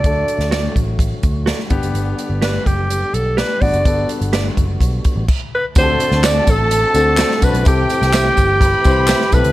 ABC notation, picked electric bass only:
X:1
M:4/4
L:1/16
Q:1/4=126
K:Dmix
V:1 name="Picked electric bass" clef=bass
D,,2 z D,,3 A,,,4 D,,3 z G,,, F,,, | G,,,2 z G,,,3 F,,,4 B,,,3 z A,,, F,,, | G,,,2 z G,,,3 F,,,2 B,,,2 z A,,, z4 | D,,2 z D,,3 A,,,4 D,,3 z C,, B,,, |
C,,2 z C,,3 G,,,4 C,,3 z B,,, ^C,, |]